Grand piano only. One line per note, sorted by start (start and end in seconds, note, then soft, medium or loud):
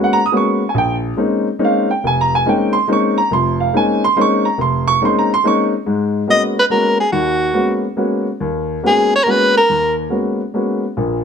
0.00 0.19 G#3 medium
0.00 0.19 A#3 soft
0.00 0.19 B3 soft
0.00 0.19 C#4 soft
0.00 0.19 F#4 medium
0.00 0.17 F#5 medium
0.13 0.22 A#5 loud
0.26 0.33 D#6 medium
0.32 0.61 G#3 medium
0.32 0.61 A#3 soft
0.32 0.61 B3 soft
0.32 0.61 C#4 medium
0.32 0.62 F#4 medium
0.37 0.67 C#6 medium
0.69 0.76 G#5 medium
0.74 1.11 A#1 medium
0.74 0.94 G5 medium
1.17 1.46 G#3 medium
1.17 1.47 A#3 soft
1.17 1.46 C4 soft
1.17 1.47 C#4 soft
1.17 1.47 D#4 medium
1.59 1.89 G#3 medium
1.59 1.89 A#3 soft
1.59 1.89 C4 medium
1.59 1.89 C#4 medium
1.59 1.89 D#4 medium
1.64 1.89 F5 medium
1.91 2.04 G5 medium
2.04 2.40 F1 medium
2.04 2.18 G#5 medium
2.21 2.33 A#5 loud
2.35 2.47 G#5 medium
2.46 2.74 G#3 medium
2.46 2.74 A#3 soft
2.46 2.74 C4 medium
2.46 2.75 C#4 soft
2.46 2.75 D#4 medium
2.46 2.74 G5 medium
2.73 2.87 C6 loud
2.88 3.16 G#3 medium
2.88 3.17 A#3 soft
2.88 3.17 C4 medium
2.88 3.17 C#4 soft
2.88 3.17 D#4 medium
2.93 3.17 C#6 medium
3.18 3.31 A#5 medium
3.31 3.67 F1 medium
3.31 3.67 F2 medium
3.31 3.58 C6 medium
3.60 3.73 F5 medium
3.73 4.02 G#3 medium
3.73 4.02 A#3 medium
3.73 4.02 C4 soft
3.73 4.02 C#4 soft
3.73 4.02 D#4 medium
3.73 4.01 G#5 medium
4.04 4.15 C6 loud
4.17 4.45 G#3 medium
4.17 4.45 A#3 medium
4.17 4.45 C4 medium
4.17 4.45 C#4 medium
4.17 4.45 D#4 medium
4.17 4.19 C6 medium
4.21 4.45 C#6 loud
4.45 4.58 A#5 medium
4.58 4.94 F1 medium
4.58 4.86 C6 medium
4.88 5.01 C#6 loud
5.01 5.30 G#3 medium
5.01 5.30 A#3 medium
5.01 5.30 C4 medium
5.01 5.30 C#4 soft
5.01 5.30 D#4 medium
5.01 5.16 C6 medium
5.19 5.30 A#5 medium
5.34 5.45 C6 loud
5.44 5.72 G#3 medium
5.44 5.72 A#3 soft
5.44 5.72 C4 medium
5.44 5.72 C#4 soft
5.44 5.73 D#4 medium
5.44 5.62 C#6 loud
5.86 6.22 G#2 medium
5.86 6.22 G#3 medium
6.27 6.56 G#3 soft
6.27 6.57 A#3 soft
6.27 6.56 B3 soft
6.27 6.56 C#4 soft
6.27 6.57 F#4 medium
6.70 6.99 G#3 soft
6.70 6.99 A#3 soft
6.70 6.99 B3 soft
6.70 6.99 C#4 soft
6.70 6.99 F#4 medium
7.12 7.49 D#2 medium
7.12 7.49 D#3 medium
7.53 7.83 G#3 soft
7.53 7.83 A#3 soft
7.53 7.84 B3 soft
7.53 7.84 C#4 soft
7.53 7.84 F#4 medium
7.97 8.26 G#3 soft
7.97 8.26 A#3 soft
7.97 8.26 B3 soft
7.97 8.27 C#4 soft
7.97 8.27 F#4 medium
8.40 8.77 D#2 medium
8.83 9.12 G#3 soft
8.83 9.12 A#3 soft
8.83 9.12 B3 soft
8.83 9.12 C#4 soft
8.83 9.12 F#4 medium
9.26 9.55 G#3 medium
9.26 9.55 A#3 soft
9.26 9.55 B3 soft
9.26 9.56 C#4 soft
9.26 9.56 F#4 medium
9.69 10.06 D#2 medium
10.10 10.39 G#3 soft
10.10 10.40 A#3 soft
10.10 10.40 B3 soft
10.10 10.40 C#4 soft
10.10 10.40 F#4 soft
10.54 10.83 G#3 soft
10.54 10.83 A#3 soft
10.54 10.83 B3 soft
10.54 10.83 C#4 soft
10.54 10.83 F#4 soft
10.97 11.24 A#1 medium
10.97 11.24 A#2 medium